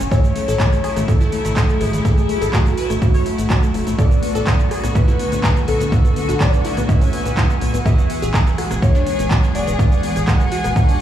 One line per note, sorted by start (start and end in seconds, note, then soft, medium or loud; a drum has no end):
0.00 3.95 C#3 medium
0.00 shaker medium
0.11 3.95 F#3 medium
0.11 7.82 A3 medium
0.11 3.95 E4 medium
0.11 0.18 A4 loud
0.11 0.99 C#5 loud
0.11 kick loud
0.11 closed hi-hat medium
0.11 shaker medium
0.24 0.32 A1 medium
0.24 0.30 A3 medium
0.24 closed hi-hat soft
0.24 shaker soft
0.36 0.42 A3 medium
0.36 open hi-hat loud
0.48 0.56 A1 medium
0.48 0.54 A4 loud
0.48 closed hi-hat medium
0.48 shaker medium
0.60 0.66 A3 medium
0.60 kick loud
0.60 cross-stick medium
0.60 clap loud
0.60 closed hi-hat medium
0.60 shaker medium
0.72 0.80 A1 medium
0.72 0.78 A3 medium
0.72 closed hi-hat soft
0.72 shaker soft
0.84 0.90 G#4 loud
0.84 cross-stick medium
0.84 open hi-hat loud
0.96 1.05 A1 medium
0.96 1.02 A3 medium
0.96 cross-stick medium
0.96 closed hi-hat medium
0.96 shaker medium
1.08 1.15 A3 medium
1.08 1.81 A4 loud
1.08 1.82 A4 loud
1.08 kick loud
1.08 closed hi-hat medium
1.08 shaker medium
1.21 1.29 A1 medium
1.21 1.27 E4 medium
1.21 closed hi-hat soft
1.21 shaker soft
1.32 1.39 A3 medium
1.32 open hi-hat loud
1.45 1.53 A1 medium
1.45 1.51 A3 medium
1.45 closed hi-hat medium
1.45 shaker medium
1.57 1.63 G#4 loud
1.57 kick loud
1.57 clap loud
1.57 closed hi-hat medium
1.57 shaker medium
1.69 1.75 A3 medium
1.69 closed hi-hat soft
1.69 shaker soft
1.81 1.89 A1 medium
1.81 1.87 A3 medium
1.81 2.44 G#4 medium
1.81 2.44 G#4 loud
1.81 open hi-hat loud
1.93 2.01 A1 medium
1.93 1.99 A3 medium
1.93 closed hi-hat medium
1.93 shaker medium
2.05 2.11 A4 loud
2.05 kick loud
2.05 closed hi-hat medium
2.05 shaker medium
2.17 2.25 A1 medium
2.17 2.23 A3 medium
2.17 closed hi-hat soft
2.17 shaker soft
2.29 2.35 A3 medium
2.29 open hi-hat loud
2.42 2.50 A1 medium
2.42 2.48 A4 loud
2.42 closed hi-hat medium
2.42 shaker medium
2.53 2.60 A3 medium
2.53 2.97 F#4 medium
2.53 kick loud
2.53 cross-stick medium
2.53 clap loud
2.53 closed hi-hat medium
2.53 shaker medium
2.66 2.74 A1 medium
2.66 2.72 A3 medium
2.66 closed hi-hat soft
2.66 shaker soft
2.78 2.84 B4 loud
2.78 open hi-hat loud
2.90 2.98 A1 medium
2.90 2.96 A3 medium
2.90 cross-stick medium
2.90 closed hi-hat medium
2.90 shaker medium
3.02 3.08 A3 medium
3.02 3.89 F#4 loud
3.02 3.89 F#4 medium
3.02 kick loud
3.02 closed hi-hat medium
3.02 shaker medium
3.14 3.22 A1 medium
3.14 3.20 C#5 medium
3.14 open hi-hat medium
3.14 shaker soft
3.26 3.32 A3 medium
3.26 open hi-hat loud
3.38 3.46 A1 medium
3.38 3.44 A3 medium
3.38 closed hi-hat medium
3.38 shaker medium
3.50 3.56 C#5 medium
3.50 kick loud
3.50 clap loud
3.50 closed hi-hat medium
3.50 shaker medium
3.63 3.69 A3 medium
3.63 closed hi-hat soft
3.63 shaker soft
3.74 3.83 F#1 medium
3.74 3.81 A3 medium
3.74 open hi-hat loud
3.87 3.95 A1 medium
3.87 3.93 A3 medium
3.87 closed hi-hat medium
3.87 shaker medium
3.98 7.82 D3 medium
3.98 9.75 B3 medium
3.98 11.01 F#4 medium
3.98 7.82 F#4 medium
3.98 4.05 A4 loud
3.98 4.86 D5 loud
3.98 11.01 G#5 medium
3.98 kick loud
3.98 closed hi-hat medium
3.98 shaker medium
4.11 4.19 B1 medium
4.11 4.17 B3 medium
4.11 closed hi-hat soft
4.11 shaker soft
4.23 4.29 B3 medium
4.23 open hi-hat loud
4.35 4.43 B1 medium
4.35 4.41 A4 loud
4.35 closed hi-hat medium
4.35 shaker medium
4.47 4.53 B3 medium
4.47 kick loud
4.47 cross-stick medium
4.47 clap loud
4.47 closed hi-hat medium
4.47 shaker medium
4.59 4.67 B1 medium
4.59 4.65 B3 medium
4.59 closed hi-hat soft
4.59 shaker soft
4.71 4.77 G#4 medium
4.71 cross-stick medium
4.71 open hi-hat loud
4.84 4.92 B1 medium
4.84 4.89 B3 medium
4.84 cross-stick medium
4.84 closed hi-hat medium
4.84 shaker medium
4.95 5.02 B3 medium
4.95 5.58 B4 medium
4.95 5.58 B4 loud
4.95 kick loud
4.95 closed hi-hat medium
4.95 shaker medium
5.08 5.16 B1 medium
5.08 5.14 E4 medium
5.08 closed hi-hat soft
5.08 shaker soft
5.19 5.26 B3 medium
5.19 open hi-hat loud
5.32 5.40 B1 medium
5.32 5.38 B3 medium
5.32 closed hi-hat medium
5.32 shaker medium
5.44 5.50 G#4 medium
5.44 kick loud
5.44 clap loud
5.44 closed hi-hat medium
5.44 shaker medium
5.56 5.62 B3 medium
5.56 closed hi-hat soft
5.56 shaker soft
5.68 5.76 B1 loud
5.68 5.74 B3 medium
5.68 6.42 A4 loud
5.68 6.40 A4 medium
5.68 open hi-hat loud
5.80 5.88 B1 medium
5.80 5.86 B3 medium
5.80 closed hi-hat medium
5.80 shaker medium
5.92 5.98 F#4 loud
5.92 kick loud
5.92 closed hi-hat soft
5.92 shaker medium
6.05 6.13 B1 medium
6.05 6.11 B3 medium
6.05 closed hi-hat soft
6.05 shaker soft
6.16 6.23 B3 medium
6.16 open hi-hat loud
6.29 6.37 B1 medium
6.29 6.35 F#4 loud
6.29 closed hi-hat medium
6.29 shaker medium
6.40 6.47 B3 medium
6.40 6.90 D5 loud
6.40 6.89 D5 medium
6.40 kick loud
6.40 cross-stick medium
6.40 clap loud
6.40 closed hi-hat medium
6.40 shaker medium
6.53 6.61 B1 medium
6.53 6.59 B3 medium
6.53 closed hi-hat soft
6.53 shaker soft
6.65 6.71 E4 loud
6.65 open hi-hat loud
6.77 6.85 B1 medium
6.77 6.83 B3 medium
6.77 cross-stick medium
6.77 closed hi-hat medium
6.77 shaker medium
6.89 6.95 B3 medium
6.89 7.76 E5 loud
6.89 7.76 E5 medium
6.89 kick loud
6.89 closed hi-hat medium
6.89 shaker medium
7.01 7.09 B1 medium
7.01 7.07 C#4 medium
7.01 open hi-hat medium
7.01 shaker soft
7.13 7.19 B3 medium
7.13 open hi-hat loud
7.26 7.34 B1 medium
7.26 7.31 B3 medium
7.26 closed hi-hat medium
7.26 shaker medium
7.37 7.44 E4 loud
7.37 kick loud
7.37 clap loud
7.37 closed hi-hat medium
7.37 shaker medium
7.50 7.56 B3 medium
7.50 closed hi-hat soft
7.50 shaker soft
7.61 7.70 B1 medium
7.61 7.68 B3 medium
7.61 open hi-hat loud
7.74 7.82 B1 medium
7.74 7.80 B3 medium
7.74 closed hi-hat medium
7.74 shaker medium
7.85 11.01 E3 medium
7.85 11.01 G#3 medium
7.85 11.01 G#4 medium
7.85 7.92 G#4 loud
7.85 8.73 E5 loud
7.85 kick loud
7.85 closed hi-hat medium
7.85 shaker medium
7.98 8.06 E1 medium
7.98 8.04 B3 medium
7.98 closed hi-hat soft
7.98 shaker soft
8.10 8.16 B3 medium
8.10 open hi-hat loud
8.22 8.30 E1 medium
8.22 8.28 G#4 loud
8.22 closed hi-hat medium
8.22 shaker medium
8.34 8.40 B3 medium
8.34 kick loud
8.34 cross-stick medium
8.34 clap loud
8.34 closed hi-hat medium
8.34 shaker medium
8.46 8.55 E1 medium
8.46 8.52 B3 medium
8.46 closed hi-hat soft
8.46 shaker soft
8.58 8.65 F#4 loud
8.58 cross-stick medium
8.58 open hi-hat loud
8.71 8.79 E1 medium
8.71 8.77 B3 medium
8.71 cross-stick medium
8.71 closed hi-hat medium
8.71 shaker medium
8.82 8.89 B3 medium
8.82 9.46 C#5 loud
8.82 kick loud
8.82 closed hi-hat soft
8.82 shaker medium
8.95 9.03 E1 medium
8.95 9.01 D4 loud
8.95 closed hi-hat soft
8.95 shaker soft
9.07 9.13 B3 medium
9.07 open hi-hat loud
9.19 9.27 E1 medium
9.19 9.25 B3 medium
9.19 closed hi-hat medium
9.19 shaker medium
9.31 9.37 F#4 loud
9.31 kick loud
9.31 clap loud
9.31 closed hi-hat medium
9.31 shaker medium
9.43 9.49 B3 medium
9.43 closed hi-hat soft
9.43 shaker soft
9.55 9.64 E1 medium
9.55 9.61 B3 medium
9.55 10.18 D5 loud
9.55 10.18 D5 medium
9.55 open hi-hat loud
9.67 9.75 E1 medium
9.67 9.73 B3 medium
9.67 closed hi-hat medium
9.67 shaker medium
9.79 9.85 G#4 loud
9.79 kick loud
9.79 closed hi-hat soft
9.79 shaker medium
9.92 10.00 E1 medium
9.92 9.98 B3 medium
9.92 closed hi-hat soft
9.92 shaker soft
10.03 10.10 B3 medium
10.03 open hi-hat loud
10.16 10.24 E1 medium
10.16 10.22 G#4 loud
10.16 closed hi-hat medium
10.16 shaker medium
10.28 10.34 B3 medium
10.28 10.71 F#5 medium
10.28 kick loud
10.28 cross-stick medium
10.28 clap loud
10.28 closed hi-hat medium
10.28 shaker medium
10.40 10.48 E1 medium
10.40 10.46 B3 medium
10.40 closed hi-hat soft
10.40 shaker soft
10.52 10.58 F#4 medium
10.52 open hi-hat loud
10.64 10.72 E1 medium
10.64 10.70 B3 medium
10.64 cross-stick medium
10.64 closed hi-hat medium
10.64 shaker medium
10.76 10.82 B3 medium
10.76 11.01 G#5 loud
10.76 11.01 G#5 medium
10.76 kick loud
10.76 closed hi-hat medium
10.76 shaker medium
10.88 10.96 E1 medium
10.88 10.94 D4 medium
10.88 open hi-hat medium
10.88 shaker soft